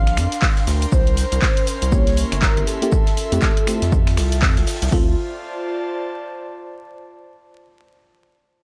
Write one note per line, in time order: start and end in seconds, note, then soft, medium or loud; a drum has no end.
0.00 0.19 A#1 medium
0.00 0.92 D4 medium
0.00 2.92 A#4 medium
0.00 0.67 F5 loud
0.00 1.73 G5 medium
0.00 3.73 C6 medium
0.07 finger snap medium
0.07 snare medium
0.07 closed hi-hat medium
0.17 0.27 F2 medium
0.17 finger snap medium
0.17 open hi-hat loud
0.17 shaker medium
0.32 snare soft
0.32 closed hi-hat medium
0.32 shaker soft
0.42 kick loud
0.42 snare loud
0.42 clap loud
0.42 open hi-hat medium
0.42 shaker soft
0.57 snare medium
0.57 closed hi-hat soft
0.67 0.86 D2 medium
0.67 snare loud
0.67 open hi-hat loud
0.67 open hi-hat medium
0.67 shaker medium
0.82 closed hi-hat medium
0.82 shaker soft
0.92 1.25 C2 loud
0.92 2.92 C#4 medium
0.92 1.94 C5 loud
0.92 kick loud
0.92 shaker loud
0.92 shaker soft
1.07 closed hi-hat soft
1.17 snare medium
1.17 open hi-hat loud
1.17 shaker medium
1.32 1.39 C2 loud
1.32 closed hi-hat medium
1.32 shaker medium
1.42 kick loud
1.42 snare loud
1.42 clap loud
1.42 open hi-hat medium
1.42 shaker soft
1.50 4.92 E5 medium
1.57 closed hi-hat medium
1.67 open hi-hat loud
1.67 shaker medium
1.82 2.25 C2 medium
1.82 closed hi-hat medium
1.82 shaker medium
1.92 2.78 A#3 medium
1.92 2.78 C#4 medium
1.92 2.79 E4 medium
1.92 2.79 G4 medium
1.92 2.44 C#5 loud
1.92 kick loud
1.92 shaker medium
1.92 shaker soft
2.07 snare medium
2.07 closed hi-hat medium
2.17 open hi-hat loud
2.17 shaker medium
2.32 2.48 G1 medium
2.32 finger snap medium
2.32 closed hi-hat medium
2.32 closed hi-hat soft
2.32 shaker soft
2.42 2.67 A#4 loud
2.42 kick loud
2.42 snare loud
2.42 clap loud
2.42 shaker medium
2.42 shaker soft
2.57 2.64 G1 medium
2.57 closed hi-hat soft
2.67 4.63 A4 loud
2.67 open hi-hat loud
2.67 shaker medium
2.82 2.91 A#3 loud
2.82 2.91 C#4 medium
2.82 2.91 E4 medium
2.82 2.91 G4 loud
2.82 closed hi-hat medium
2.82 shaker soft
2.92 4.91 F4 medium
2.92 kick loud
2.92 shaker loud
2.92 shaker soft
3.07 snare medium
3.07 closed hi-hat soft
3.17 open hi-hat loud
3.17 shaker medium
3.26 4.92 A4 medium
3.32 3.39 F2 loud
3.32 3.49 A3 medium
3.32 3.50 C4 medium
3.32 3.50 E4 medium
3.32 3.50 G4 medium
3.32 closed hi-hat medium
3.32 shaker medium
3.42 kick loud
3.42 snare loud
3.42 clap loud
3.42 shaker medium
3.57 closed hi-hat medium
3.67 3.81 A3 medium
3.67 3.81 C4 medium
3.67 3.81 E4 medium
3.67 3.81 G4 medium
3.67 finger snap medium
3.67 open hi-hat loud
3.67 shaker medium
3.82 4.19 F2 medium
3.82 4.92 G5 medium
3.82 snare medium
3.82 closed hi-hat medium
3.82 shaker soft
3.92 kick loud
3.92 shaker medium
3.92 shaker soft
4.07 finger snap medium
4.07 snare medium
4.07 open hi-hat medium
4.17 4.44 C2 loud
4.17 finger snap medium
4.17 snare loud
4.17 open hi-hat loud
4.17 open hi-hat medium
4.17 shaker medium
4.32 snare medium
4.32 closed hi-hat medium
4.32 shaker soft
4.42 4.59 F2 medium
4.42 kick loud
4.42 snare loud
4.42 clap loud
4.42 open hi-hat medium
4.42 shaker soft
4.57 4.64 C2 medium
4.57 snare medium
4.57 closed hi-hat soft
4.67 snare medium
4.67 open hi-hat medium
4.67 shaker medium
4.75 snare medium
4.75 open hi-hat medium
4.82 4.89 C2 loud
4.82 snare loud
4.82 closed hi-hat medium
4.82 open hi-hat medium
4.82 shaker soft
4.87 snare medium
4.87 open hi-hat medium
4.91 5.16 D2 medium
4.91 5.11 C4 medium
4.91 5.12 E4 medium
4.91 6.88 F4 medium
4.91 5.16 F4 medium
4.91 5.12 F4 medium
4.91 5.12 A4 medium
4.91 kick loud
4.91 open hi-hat medium
5.01 6.88 C5 medium
5.09 6.88 D5 medium
5.15 6.88 A5 medium